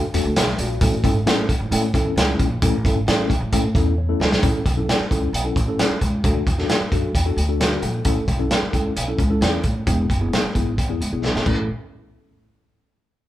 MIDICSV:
0, 0, Header, 1, 5, 480
1, 0, Start_track
1, 0, Key_signature, 3, "major"
1, 0, Tempo, 452830
1, 865, Time_signature, 4, 2, 24, 8
1, 14079, End_track
2, 0, Start_track
2, 0, Title_t, "Tine electric piano"
2, 0, Program_c, 0, 4
2, 149, Note_on_c, 0, 62, 76
2, 150, Note_on_c, 0, 57, 92
2, 152, Note_on_c, 0, 66, 88
2, 153, Note_on_c, 0, 69, 98
2, 340, Note_off_c, 0, 62, 0
2, 341, Note_off_c, 0, 57, 0
2, 342, Note_off_c, 0, 66, 0
2, 342, Note_off_c, 0, 69, 0
2, 396, Note_on_c, 0, 76, 68
2, 401, Note_on_c, 0, 68, 54
2, 619, Note_off_c, 0, 76, 0
2, 621, Note_off_c, 0, 68, 0
2, 631, Note_on_c, 0, 74, 72
2, 635, Note_on_c, 0, 66, 60
2, 866, Note_on_c, 0, 57, 94
2, 867, Note_on_c, 0, 61, 83
2, 867, Note_on_c, 0, 64, 82
2, 868, Note_on_c, 0, 69, 99
2, 993, Note_off_c, 0, 57, 0
2, 994, Note_off_c, 0, 61, 0
2, 994, Note_off_c, 0, 64, 0
2, 995, Note_off_c, 0, 69, 0
2, 1083, Note_off_c, 0, 74, 0
2, 1085, Note_off_c, 0, 66, 0
2, 1102, Note_on_c, 0, 61, 85
2, 1103, Note_on_c, 0, 57, 98
2, 1104, Note_on_c, 0, 64, 89
2, 1105, Note_on_c, 0, 69, 111
2, 1231, Note_off_c, 0, 61, 0
2, 1232, Note_off_c, 0, 57, 0
2, 1232, Note_off_c, 0, 64, 0
2, 1233, Note_off_c, 0, 69, 0
2, 1339, Note_on_c, 0, 57, 92
2, 1341, Note_on_c, 0, 61, 84
2, 1341, Note_on_c, 0, 64, 81
2, 1344, Note_on_c, 0, 69, 99
2, 1598, Note_off_c, 0, 57, 0
2, 1599, Note_off_c, 0, 61, 0
2, 1599, Note_off_c, 0, 64, 0
2, 1600, Note_off_c, 0, 69, 0
2, 1818, Note_on_c, 0, 61, 80
2, 1820, Note_on_c, 0, 57, 93
2, 1822, Note_on_c, 0, 64, 82
2, 1824, Note_on_c, 0, 69, 104
2, 1948, Note_off_c, 0, 61, 0
2, 1949, Note_off_c, 0, 57, 0
2, 1950, Note_off_c, 0, 64, 0
2, 1951, Note_off_c, 0, 69, 0
2, 2061, Note_on_c, 0, 57, 94
2, 2061, Note_on_c, 0, 64, 86
2, 2063, Note_on_c, 0, 69, 105
2, 2065, Note_on_c, 0, 61, 81
2, 2253, Note_off_c, 0, 57, 0
2, 2254, Note_off_c, 0, 64, 0
2, 2255, Note_off_c, 0, 69, 0
2, 2256, Note_off_c, 0, 61, 0
2, 2421, Note_on_c, 0, 57, 85
2, 2422, Note_on_c, 0, 68, 96
2, 2423, Note_on_c, 0, 61, 81
2, 2424, Note_on_c, 0, 64, 78
2, 2613, Note_off_c, 0, 57, 0
2, 2614, Note_off_c, 0, 61, 0
2, 2614, Note_off_c, 0, 68, 0
2, 2615, Note_off_c, 0, 64, 0
2, 2783, Note_on_c, 0, 57, 88
2, 2784, Note_on_c, 0, 64, 79
2, 2784, Note_on_c, 0, 69, 100
2, 2785, Note_on_c, 0, 61, 83
2, 2909, Note_off_c, 0, 57, 0
2, 2910, Note_off_c, 0, 61, 0
2, 2910, Note_off_c, 0, 64, 0
2, 2910, Note_off_c, 0, 69, 0
2, 3021, Note_on_c, 0, 61, 84
2, 3022, Note_on_c, 0, 57, 92
2, 3025, Note_on_c, 0, 69, 100
2, 3026, Note_on_c, 0, 64, 86
2, 3148, Note_off_c, 0, 61, 0
2, 3149, Note_off_c, 0, 57, 0
2, 3150, Note_off_c, 0, 64, 0
2, 3150, Note_off_c, 0, 69, 0
2, 3267, Note_on_c, 0, 57, 91
2, 3268, Note_on_c, 0, 64, 80
2, 3270, Note_on_c, 0, 61, 78
2, 3270, Note_on_c, 0, 69, 91
2, 3519, Note_off_c, 0, 57, 0
2, 3520, Note_off_c, 0, 64, 0
2, 3521, Note_off_c, 0, 61, 0
2, 3521, Note_off_c, 0, 69, 0
2, 3741, Note_on_c, 0, 57, 88
2, 3742, Note_on_c, 0, 64, 79
2, 3744, Note_on_c, 0, 61, 84
2, 3745, Note_on_c, 0, 69, 103
2, 3868, Note_off_c, 0, 57, 0
2, 3868, Note_off_c, 0, 64, 0
2, 3869, Note_off_c, 0, 61, 0
2, 3869, Note_off_c, 0, 69, 0
2, 3979, Note_on_c, 0, 57, 84
2, 3980, Note_on_c, 0, 64, 80
2, 3980, Note_on_c, 0, 69, 91
2, 3981, Note_on_c, 0, 61, 80
2, 4170, Note_off_c, 0, 57, 0
2, 4171, Note_off_c, 0, 61, 0
2, 4171, Note_off_c, 0, 64, 0
2, 4171, Note_off_c, 0, 69, 0
2, 4220, Note_on_c, 0, 73, 75
2, 4334, Note_on_c, 0, 57, 87
2, 4336, Note_on_c, 0, 61, 74
2, 4336, Note_on_c, 0, 69, 93
2, 4337, Note_on_c, 0, 64, 76
2, 4527, Note_off_c, 0, 57, 0
2, 4529, Note_off_c, 0, 61, 0
2, 4529, Note_off_c, 0, 64, 0
2, 4529, Note_off_c, 0, 69, 0
2, 4664, Note_off_c, 0, 73, 0
2, 4695, Note_on_c, 0, 64, 80
2, 4698, Note_on_c, 0, 61, 83
2, 4699, Note_on_c, 0, 69, 93
2, 4888, Note_off_c, 0, 64, 0
2, 4889, Note_off_c, 0, 61, 0
2, 4890, Note_off_c, 0, 69, 0
2, 5056, Note_on_c, 0, 61, 81
2, 5058, Note_on_c, 0, 64, 78
2, 5061, Note_on_c, 0, 69, 91
2, 5248, Note_off_c, 0, 61, 0
2, 5249, Note_off_c, 0, 64, 0
2, 5250, Note_off_c, 0, 69, 0
2, 5416, Note_on_c, 0, 64, 70
2, 5418, Note_on_c, 0, 61, 78
2, 5421, Note_on_c, 0, 69, 87
2, 5608, Note_off_c, 0, 64, 0
2, 5609, Note_off_c, 0, 61, 0
2, 5610, Note_off_c, 0, 69, 0
2, 5770, Note_on_c, 0, 61, 81
2, 5775, Note_on_c, 0, 64, 73
2, 5777, Note_on_c, 0, 69, 87
2, 5901, Note_off_c, 0, 61, 0
2, 5903, Note_off_c, 0, 64, 0
2, 5904, Note_off_c, 0, 69, 0
2, 6015, Note_on_c, 0, 61, 86
2, 6018, Note_on_c, 0, 69, 94
2, 6019, Note_on_c, 0, 64, 71
2, 6336, Note_off_c, 0, 61, 0
2, 6338, Note_off_c, 0, 64, 0
2, 6338, Note_off_c, 0, 69, 0
2, 6616, Note_on_c, 0, 62, 92
2, 6619, Note_on_c, 0, 66, 79
2, 6619, Note_on_c, 0, 69, 93
2, 6808, Note_off_c, 0, 62, 0
2, 6810, Note_off_c, 0, 66, 0
2, 6810, Note_off_c, 0, 69, 0
2, 6980, Note_on_c, 0, 62, 87
2, 6982, Note_on_c, 0, 66, 76
2, 6984, Note_on_c, 0, 69, 89
2, 7170, Note_off_c, 0, 62, 0
2, 7171, Note_off_c, 0, 66, 0
2, 7172, Note_off_c, 0, 69, 0
2, 7338, Note_on_c, 0, 66, 75
2, 7339, Note_on_c, 0, 62, 79
2, 7343, Note_on_c, 0, 69, 87
2, 7529, Note_off_c, 0, 66, 0
2, 7530, Note_off_c, 0, 62, 0
2, 7532, Note_off_c, 0, 69, 0
2, 7692, Note_on_c, 0, 62, 78
2, 7693, Note_on_c, 0, 66, 76
2, 7695, Note_on_c, 0, 69, 87
2, 7822, Note_off_c, 0, 62, 0
2, 7822, Note_off_c, 0, 66, 0
2, 7823, Note_off_c, 0, 69, 0
2, 7935, Note_on_c, 0, 62, 88
2, 7935, Note_on_c, 0, 66, 71
2, 7940, Note_on_c, 0, 69, 92
2, 8051, Note_off_c, 0, 66, 0
2, 8056, Note_on_c, 0, 74, 70
2, 8057, Note_off_c, 0, 69, 0
2, 8064, Note_on_c, 0, 66, 54
2, 8257, Note_off_c, 0, 62, 0
2, 8283, Note_off_c, 0, 74, 0
2, 8288, Note_off_c, 0, 66, 0
2, 8298, Note_on_c, 0, 78, 63
2, 8308, Note_on_c, 0, 69, 55
2, 8526, Note_off_c, 0, 69, 0
2, 8534, Note_on_c, 0, 61, 82
2, 8535, Note_on_c, 0, 64, 79
2, 8538, Note_on_c, 0, 69, 93
2, 8728, Note_off_c, 0, 61, 0
2, 8728, Note_off_c, 0, 64, 0
2, 8730, Note_off_c, 0, 69, 0
2, 8753, Note_off_c, 0, 78, 0
2, 8894, Note_on_c, 0, 61, 85
2, 8896, Note_on_c, 0, 69, 93
2, 8897, Note_on_c, 0, 64, 78
2, 9088, Note_off_c, 0, 61, 0
2, 9089, Note_off_c, 0, 69, 0
2, 9090, Note_off_c, 0, 64, 0
2, 9249, Note_on_c, 0, 61, 77
2, 9253, Note_on_c, 0, 64, 73
2, 9254, Note_on_c, 0, 69, 95
2, 9446, Note_off_c, 0, 61, 0
2, 9448, Note_off_c, 0, 64, 0
2, 9449, Note_off_c, 0, 69, 0
2, 9620, Note_on_c, 0, 61, 80
2, 9622, Note_on_c, 0, 64, 80
2, 9623, Note_on_c, 0, 69, 88
2, 9748, Note_off_c, 0, 61, 0
2, 9749, Note_off_c, 0, 64, 0
2, 9749, Note_off_c, 0, 69, 0
2, 9857, Note_on_c, 0, 61, 78
2, 9859, Note_on_c, 0, 64, 78
2, 9862, Note_on_c, 0, 69, 98
2, 10180, Note_off_c, 0, 61, 0
2, 10180, Note_off_c, 0, 64, 0
2, 10182, Note_off_c, 0, 69, 0
2, 10459, Note_on_c, 0, 64, 73
2, 10461, Note_on_c, 0, 59, 88
2, 10462, Note_on_c, 0, 68, 92
2, 10652, Note_off_c, 0, 64, 0
2, 10653, Note_off_c, 0, 59, 0
2, 10654, Note_off_c, 0, 68, 0
2, 10822, Note_on_c, 0, 59, 85
2, 10825, Note_on_c, 0, 64, 79
2, 10826, Note_on_c, 0, 68, 93
2, 11014, Note_off_c, 0, 59, 0
2, 11016, Note_off_c, 0, 64, 0
2, 11016, Note_off_c, 0, 68, 0
2, 11186, Note_on_c, 0, 59, 77
2, 11191, Note_on_c, 0, 64, 75
2, 11191, Note_on_c, 0, 68, 86
2, 11377, Note_off_c, 0, 59, 0
2, 11380, Note_off_c, 0, 64, 0
2, 11380, Note_off_c, 0, 68, 0
2, 11549, Note_on_c, 0, 59, 82
2, 11550, Note_on_c, 0, 64, 70
2, 11554, Note_on_c, 0, 68, 86
2, 11675, Note_off_c, 0, 59, 0
2, 11675, Note_off_c, 0, 64, 0
2, 11677, Note_off_c, 0, 68, 0
2, 11790, Note_on_c, 0, 59, 74
2, 11790, Note_on_c, 0, 64, 69
2, 11792, Note_on_c, 0, 68, 84
2, 11901, Note_off_c, 0, 68, 0
2, 11907, Note_off_c, 0, 64, 0
2, 11912, Note_on_c, 0, 76, 60
2, 11914, Note_on_c, 0, 68, 52
2, 12109, Note_off_c, 0, 59, 0
2, 12137, Note_off_c, 0, 76, 0
2, 12138, Note_off_c, 0, 68, 0
2, 12147, Note_on_c, 0, 61, 75
2, 12148, Note_on_c, 0, 64, 74
2, 12150, Note_on_c, 0, 69, 87
2, 12370, Note_off_c, 0, 61, 0
2, 12370, Note_off_c, 0, 64, 0
2, 12371, Note_off_c, 0, 69, 0
2, 14079, End_track
3, 0, Start_track
3, 0, Title_t, "Upright bass"
3, 0, Program_c, 1, 32
3, 144, Note_on_c, 1, 40, 90
3, 245, Note_off_c, 1, 40, 0
3, 262, Note_on_c, 1, 38, 100
3, 364, Note_off_c, 1, 38, 0
3, 382, Note_on_c, 1, 35, 92
3, 584, Note_off_c, 1, 35, 0
3, 618, Note_on_c, 1, 34, 100
3, 821, Note_off_c, 1, 34, 0
3, 861, Note_on_c, 1, 33, 114
3, 1063, Note_off_c, 1, 33, 0
3, 1100, Note_on_c, 1, 32, 108
3, 1302, Note_off_c, 1, 32, 0
3, 1341, Note_on_c, 1, 33, 92
3, 1642, Note_off_c, 1, 33, 0
3, 1693, Note_on_c, 1, 33, 93
3, 1797, Note_off_c, 1, 33, 0
3, 1815, Note_on_c, 1, 45, 102
3, 2018, Note_off_c, 1, 45, 0
3, 2057, Note_on_c, 1, 40, 86
3, 2259, Note_off_c, 1, 40, 0
3, 2287, Note_on_c, 1, 37, 90
3, 2493, Note_off_c, 1, 37, 0
3, 2539, Note_on_c, 1, 34, 102
3, 2740, Note_off_c, 1, 34, 0
3, 2780, Note_on_c, 1, 33, 109
3, 2980, Note_off_c, 1, 33, 0
3, 3021, Note_on_c, 1, 32, 93
3, 3221, Note_off_c, 1, 32, 0
3, 3251, Note_on_c, 1, 33, 90
3, 3554, Note_off_c, 1, 33, 0
3, 3608, Note_on_c, 1, 33, 92
3, 3712, Note_off_c, 1, 33, 0
3, 3736, Note_on_c, 1, 45, 103
3, 3937, Note_off_c, 1, 45, 0
3, 3973, Note_on_c, 1, 40, 99
3, 4376, Note_off_c, 1, 40, 0
3, 4450, Note_on_c, 1, 37, 93
3, 4653, Note_off_c, 1, 37, 0
3, 4696, Note_on_c, 1, 33, 103
3, 4896, Note_off_c, 1, 33, 0
3, 4936, Note_on_c, 1, 35, 93
3, 5136, Note_off_c, 1, 35, 0
3, 5417, Note_on_c, 1, 37, 92
3, 5617, Note_off_c, 1, 37, 0
3, 5648, Note_on_c, 1, 35, 90
3, 5851, Note_off_c, 1, 35, 0
3, 5892, Note_on_c, 1, 33, 87
3, 6094, Note_off_c, 1, 33, 0
3, 6371, Note_on_c, 1, 37, 90
3, 6573, Note_off_c, 1, 37, 0
3, 6612, Note_on_c, 1, 38, 101
3, 6814, Note_off_c, 1, 38, 0
3, 6853, Note_on_c, 1, 40, 94
3, 7054, Note_off_c, 1, 40, 0
3, 7330, Note_on_c, 1, 42, 88
3, 7532, Note_off_c, 1, 42, 0
3, 7573, Note_on_c, 1, 40, 98
3, 7775, Note_off_c, 1, 40, 0
3, 7805, Note_on_c, 1, 38, 89
3, 8211, Note_off_c, 1, 38, 0
3, 8287, Note_on_c, 1, 34, 96
3, 8491, Note_off_c, 1, 34, 0
3, 8533, Note_on_c, 1, 33, 105
3, 8735, Note_off_c, 1, 33, 0
3, 8776, Note_on_c, 1, 35, 89
3, 8977, Note_off_c, 1, 35, 0
3, 9253, Note_on_c, 1, 37, 85
3, 9456, Note_off_c, 1, 37, 0
3, 9499, Note_on_c, 1, 35, 93
3, 9699, Note_off_c, 1, 35, 0
3, 9737, Note_on_c, 1, 37, 89
3, 9938, Note_off_c, 1, 37, 0
3, 9972, Note_on_c, 1, 40, 97
3, 10176, Note_off_c, 1, 40, 0
3, 10217, Note_on_c, 1, 45, 96
3, 10419, Note_off_c, 1, 45, 0
3, 10458, Note_on_c, 1, 28, 107
3, 10660, Note_off_c, 1, 28, 0
3, 10703, Note_on_c, 1, 30, 84
3, 10903, Note_off_c, 1, 30, 0
3, 11180, Note_on_c, 1, 32, 85
3, 11382, Note_off_c, 1, 32, 0
3, 11535, Note_on_c, 1, 40, 83
3, 11639, Note_off_c, 1, 40, 0
3, 11665, Note_on_c, 1, 37, 83
3, 11765, Note_off_c, 1, 37, 0
3, 11790, Note_on_c, 1, 35, 88
3, 11989, Note_off_c, 1, 35, 0
3, 12028, Note_on_c, 1, 33, 76
3, 12127, Note_off_c, 1, 33, 0
3, 12150, Note_on_c, 1, 33, 97
3, 12371, Note_off_c, 1, 33, 0
3, 14079, End_track
4, 0, Start_track
4, 0, Title_t, "Muted upright bass strokes"
4, 5288, Note_on_c, 9, 29, 45
4, 5394, Note_off_c, 9, 29, 0
4, 6249, Note_on_c, 9, 29, 46
4, 6355, Note_off_c, 9, 29, 0
4, 7207, Note_on_c, 9, 29, 49
4, 7313, Note_off_c, 9, 29, 0
4, 9138, Note_on_c, 9, 29, 47
4, 9244, Note_off_c, 9, 29, 0
4, 11053, Note_on_c, 9, 29, 47
4, 11159, Note_off_c, 9, 29, 0
4, 14079, End_track
5, 0, Start_track
5, 0, Title_t, "Drums"
5, 149, Note_on_c, 9, 42, 77
5, 255, Note_off_c, 9, 42, 0
5, 386, Note_on_c, 9, 42, 103
5, 388, Note_on_c, 9, 38, 127
5, 492, Note_off_c, 9, 42, 0
5, 494, Note_off_c, 9, 38, 0
5, 512, Note_on_c, 9, 38, 41
5, 618, Note_off_c, 9, 38, 0
5, 621, Note_on_c, 9, 42, 67
5, 727, Note_off_c, 9, 42, 0
5, 859, Note_on_c, 9, 42, 96
5, 860, Note_on_c, 9, 36, 118
5, 965, Note_off_c, 9, 42, 0
5, 966, Note_off_c, 9, 36, 0
5, 1099, Note_on_c, 9, 36, 93
5, 1104, Note_on_c, 9, 42, 83
5, 1205, Note_off_c, 9, 36, 0
5, 1210, Note_off_c, 9, 42, 0
5, 1346, Note_on_c, 9, 42, 88
5, 1348, Note_on_c, 9, 38, 124
5, 1452, Note_off_c, 9, 42, 0
5, 1454, Note_off_c, 9, 38, 0
5, 1579, Note_on_c, 9, 36, 79
5, 1583, Note_on_c, 9, 42, 78
5, 1685, Note_off_c, 9, 36, 0
5, 1689, Note_off_c, 9, 42, 0
5, 1823, Note_on_c, 9, 42, 99
5, 1929, Note_off_c, 9, 42, 0
5, 2056, Note_on_c, 9, 36, 98
5, 2064, Note_on_c, 9, 42, 75
5, 2162, Note_off_c, 9, 36, 0
5, 2170, Note_off_c, 9, 42, 0
5, 2306, Note_on_c, 9, 42, 105
5, 2309, Note_on_c, 9, 38, 127
5, 2412, Note_off_c, 9, 42, 0
5, 2415, Note_off_c, 9, 38, 0
5, 2539, Note_on_c, 9, 36, 80
5, 2540, Note_on_c, 9, 42, 64
5, 2645, Note_off_c, 9, 36, 0
5, 2646, Note_off_c, 9, 42, 0
5, 2779, Note_on_c, 9, 42, 102
5, 2780, Note_on_c, 9, 36, 119
5, 2885, Note_off_c, 9, 42, 0
5, 2886, Note_off_c, 9, 36, 0
5, 3019, Note_on_c, 9, 36, 90
5, 3028, Note_on_c, 9, 42, 77
5, 3125, Note_off_c, 9, 36, 0
5, 3134, Note_off_c, 9, 42, 0
5, 3264, Note_on_c, 9, 42, 84
5, 3266, Note_on_c, 9, 38, 124
5, 3370, Note_off_c, 9, 42, 0
5, 3372, Note_off_c, 9, 38, 0
5, 3497, Note_on_c, 9, 36, 78
5, 3505, Note_on_c, 9, 42, 70
5, 3603, Note_off_c, 9, 36, 0
5, 3611, Note_off_c, 9, 42, 0
5, 3738, Note_on_c, 9, 36, 86
5, 3738, Note_on_c, 9, 42, 104
5, 3844, Note_off_c, 9, 36, 0
5, 3844, Note_off_c, 9, 42, 0
5, 3974, Note_on_c, 9, 36, 99
5, 3983, Note_on_c, 9, 42, 74
5, 4080, Note_off_c, 9, 36, 0
5, 4089, Note_off_c, 9, 42, 0
5, 4466, Note_on_c, 9, 38, 89
5, 4572, Note_off_c, 9, 38, 0
5, 4583, Note_on_c, 9, 38, 100
5, 4689, Note_off_c, 9, 38, 0
5, 4696, Note_on_c, 9, 36, 124
5, 4696, Note_on_c, 9, 42, 95
5, 4802, Note_off_c, 9, 36, 0
5, 4802, Note_off_c, 9, 42, 0
5, 4936, Note_on_c, 9, 36, 91
5, 4940, Note_on_c, 9, 42, 79
5, 5042, Note_off_c, 9, 36, 0
5, 5046, Note_off_c, 9, 42, 0
5, 5186, Note_on_c, 9, 42, 85
5, 5187, Note_on_c, 9, 38, 118
5, 5292, Note_off_c, 9, 42, 0
5, 5293, Note_off_c, 9, 38, 0
5, 5416, Note_on_c, 9, 36, 81
5, 5425, Note_on_c, 9, 42, 68
5, 5522, Note_off_c, 9, 36, 0
5, 5531, Note_off_c, 9, 42, 0
5, 5664, Note_on_c, 9, 42, 97
5, 5770, Note_off_c, 9, 42, 0
5, 5894, Note_on_c, 9, 36, 97
5, 5904, Note_on_c, 9, 42, 68
5, 6000, Note_off_c, 9, 36, 0
5, 6010, Note_off_c, 9, 42, 0
5, 6141, Note_on_c, 9, 42, 96
5, 6143, Note_on_c, 9, 38, 117
5, 6247, Note_off_c, 9, 42, 0
5, 6249, Note_off_c, 9, 38, 0
5, 6375, Note_on_c, 9, 36, 84
5, 6377, Note_on_c, 9, 42, 66
5, 6481, Note_off_c, 9, 36, 0
5, 6483, Note_off_c, 9, 42, 0
5, 6615, Note_on_c, 9, 36, 125
5, 6616, Note_on_c, 9, 42, 96
5, 6721, Note_off_c, 9, 36, 0
5, 6722, Note_off_c, 9, 42, 0
5, 6855, Note_on_c, 9, 36, 95
5, 6860, Note_on_c, 9, 42, 72
5, 6961, Note_off_c, 9, 36, 0
5, 6966, Note_off_c, 9, 42, 0
5, 6979, Note_on_c, 9, 38, 32
5, 7085, Note_off_c, 9, 38, 0
5, 7097, Note_on_c, 9, 42, 82
5, 7099, Note_on_c, 9, 38, 115
5, 7203, Note_off_c, 9, 42, 0
5, 7205, Note_off_c, 9, 38, 0
5, 7333, Note_on_c, 9, 36, 79
5, 7336, Note_on_c, 9, 42, 73
5, 7439, Note_off_c, 9, 36, 0
5, 7442, Note_off_c, 9, 42, 0
5, 7576, Note_on_c, 9, 36, 84
5, 7582, Note_on_c, 9, 42, 96
5, 7682, Note_off_c, 9, 36, 0
5, 7688, Note_off_c, 9, 42, 0
5, 7820, Note_on_c, 9, 42, 68
5, 7926, Note_off_c, 9, 42, 0
5, 8063, Note_on_c, 9, 42, 99
5, 8065, Note_on_c, 9, 38, 127
5, 8169, Note_off_c, 9, 42, 0
5, 8171, Note_off_c, 9, 38, 0
5, 8295, Note_on_c, 9, 42, 66
5, 8401, Note_off_c, 9, 42, 0
5, 8530, Note_on_c, 9, 42, 94
5, 8535, Note_on_c, 9, 36, 111
5, 8636, Note_off_c, 9, 42, 0
5, 8641, Note_off_c, 9, 36, 0
5, 8775, Note_on_c, 9, 36, 96
5, 8778, Note_on_c, 9, 42, 76
5, 8881, Note_off_c, 9, 36, 0
5, 8884, Note_off_c, 9, 42, 0
5, 9018, Note_on_c, 9, 42, 82
5, 9020, Note_on_c, 9, 38, 120
5, 9124, Note_off_c, 9, 42, 0
5, 9126, Note_off_c, 9, 38, 0
5, 9257, Note_on_c, 9, 36, 76
5, 9262, Note_on_c, 9, 42, 73
5, 9363, Note_off_c, 9, 36, 0
5, 9368, Note_off_c, 9, 42, 0
5, 9504, Note_on_c, 9, 42, 94
5, 9610, Note_off_c, 9, 42, 0
5, 9736, Note_on_c, 9, 36, 86
5, 9747, Note_on_c, 9, 42, 66
5, 9842, Note_off_c, 9, 36, 0
5, 9853, Note_off_c, 9, 42, 0
5, 9985, Note_on_c, 9, 42, 96
5, 9987, Note_on_c, 9, 38, 121
5, 10091, Note_off_c, 9, 42, 0
5, 10093, Note_off_c, 9, 38, 0
5, 10213, Note_on_c, 9, 42, 64
5, 10219, Note_on_c, 9, 36, 80
5, 10319, Note_off_c, 9, 42, 0
5, 10325, Note_off_c, 9, 36, 0
5, 10461, Note_on_c, 9, 36, 119
5, 10463, Note_on_c, 9, 42, 90
5, 10567, Note_off_c, 9, 36, 0
5, 10569, Note_off_c, 9, 42, 0
5, 10703, Note_on_c, 9, 36, 90
5, 10712, Note_on_c, 9, 42, 74
5, 10809, Note_off_c, 9, 36, 0
5, 10818, Note_off_c, 9, 42, 0
5, 10953, Note_on_c, 9, 42, 82
5, 10955, Note_on_c, 9, 38, 115
5, 11059, Note_off_c, 9, 42, 0
5, 11061, Note_off_c, 9, 38, 0
5, 11185, Note_on_c, 9, 36, 80
5, 11189, Note_on_c, 9, 42, 70
5, 11291, Note_off_c, 9, 36, 0
5, 11295, Note_off_c, 9, 42, 0
5, 11429, Note_on_c, 9, 36, 87
5, 11434, Note_on_c, 9, 42, 86
5, 11535, Note_off_c, 9, 36, 0
5, 11540, Note_off_c, 9, 42, 0
5, 11677, Note_on_c, 9, 42, 63
5, 11783, Note_off_c, 9, 42, 0
5, 11920, Note_on_c, 9, 38, 58
5, 12026, Note_off_c, 9, 38, 0
5, 12039, Note_on_c, 9, 38, 61
5, 12145, Note_off_c, 9, 38, 0
5, 12149, Note_on_c, 9, 36, 96
5, 12151, Note_on_c, 9, 49, 81
5, 12255, Note_off_c, 9, 36, 0
5, 12257, Note_off_c, 9, 49, 0
5, 14079, End_track
0, 0, End_of_file